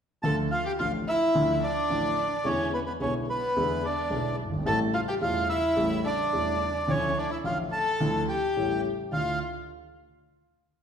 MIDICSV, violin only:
0, 0, Header, 1, 2, 480
1, 0, Start_track
1, 0, Key_signature, -1, "minor"
1, 0, Tempo, 556070
1, 205, Time_signature, 4, 2, 24, 8
1, 9348, End_track
2, 0, Start_track
2, 0, Title_t, "Violin"
2, 0, Program_c, 0, 40
2, 211, Note_on_c, 0, 69, 61
2, 318, Note_off_c, 0, 69, 0
2, 444, Note_on_c, 0, 65, 62
2, 557, Note_off_c, 0, 65, 0
2, 562, Note_on_c, 0, 67, 54
2, 617, Note_off_c, 0, 67, 0
2, 680, Note_on_c, 0, 65, 50
2, 790, Note_off_c, 0, 65, 0
2, 930, Note_on_c, 0, 64, 61
2, 1374, Note_off_c, 0, 64, 0
2, 1418, Note_on_c, 0, 62, 62
2, 2091, Note_off_c, 0, 62, 0
2, 2130, Note_on_c, 0, 61, 49
2, 2348, Note_off_c, 0, 61, 0
2, 2367, Note_on_c, 0, 59, 47
2, 2419, Note_off_c, 0, 59, 0
2, 2481, Note_on_c, 0, 59, 42
2, 2534, Note_off_c, 0, 59, 0
2, 2594, Note_on_c, 0, 61, 47
2, 2702, Note_off_c, 0, 61, 0
2, 2838, Note_on_c, 0, 59, 56
2, 3280, Note_off_c, 0, 59, 0
2, 3313, Note_on_c, 0, 62, 48
2, 3757, Note_off_c, 0, 62, 0
2, 4028, Note_on_c, 0, 69, 65
2, 4136, Note_off_c, 0, 69, 0
2, 4262, Note_on_c, 0, 65, 64
2, 4317, Note_off_c, 0, 65, 0
2, 4388, Note_on_c, 0, 67, 57
2, 4441, Note_off_c, 0, 67, 0
2, 4500, Note_on_c, 0, 65, 56
2, 4725, Note_off_c, 0, 65, 0
2, 4736, Note_on_c, 0, 64, 62
2, 5187, Note_off_c, 0, 64, 0
2, 5218, Note_on_c, 0, 62, 56
2, 5907, Note_off_c, 0, 62, 0
2, 5945, Note_on_c, 0, 61, 56
2, 6169, Note_off_c, 0, 61, 0
2, 6195, Note_on_c, 0, 62, 57
2, 6303, Note_off_c, 0, 62, 0
2, 6308, Note_on_c, 0, 64, 46
2, 6362, Note_off_c, 0, 64, 0
2, 6433, Note_on_c, 0, 65, 45
2, 6541, Note_off_c, 0, 65, 0
2, 6677, Note_on_c, 0, 69, 67
2, 7122, Note_off_c, 0, 69, 0
2, 7155, Note_on_c, 0, 67, 53
2, 7607, Note_off_c, 0, 67, 0
2, 7879, Note_on_c, 0, 65, 55
2, 8105, Note_off_c, 0, 65, 0
2, 9348, End_track
0, 0, End_of_file